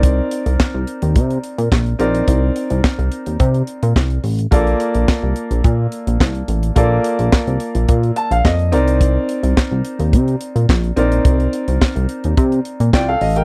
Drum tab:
HH |x-xx--xxxxxx-xxx|x-xx-xxxxxxx-xox|xxxx--xxx-xx-xxx|x-xx-xxxxxxx-xxx|
CP |----x-------x---|----x-------x---|----x-------x---|----x-------x---|
SD |----o-------o---|----o-------o---|----o-------o---|----o-------o---|
BD |o---o---o---o---|o---o---o---o---|o---o---o---o---|o---o---o---o---|

HH |x-xx--xxxxxx-xxx|xxxx-xxxxxxx--ox|
CP |----x-------x---|----x-------x---|
SD |----o-------o---|----o-------o---|
BD |o---o---o---o---|o---o---o---o---|